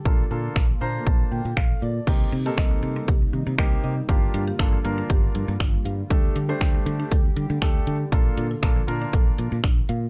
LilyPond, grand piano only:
\new Staff \with { instrumentName = "Grand piano" } { \time 4/4 \key c \dorian \tempo 4 = 119 << { r4. bes''8 a''8 g''8 f''8 d''8 | r1 | r1 | r1 |
r1 | } \\ { <bes d' f' a'>16 r16 <bes d' f' a'>8. r16 <bes d' f' c''>4~ <bes d' f' c''>16 r4 r16 | <bes c' ees' g'>8 r16 <bes c' ees' a'>4~ <bes c' ees' a'>16 r4 <bes c' ees' g'>8. r16 | <bes d' f' g'>8. r16 <bes d' f' a'>16 r16 <bes d' f' bes'>4~ <bes d' f' bes'>16 r4 r16 | <a d' g' a'>8 r16 <a d' g' c''>4~ <a d' g' c''>16 r4 <a d' g' a'>8. r16 |
<bes d' f' a'>8. r16 <bes d' f' a'>16 r16 <bes d' f' bes'>4~ <bes d' f' bes'>16 r4 r16 | } >> }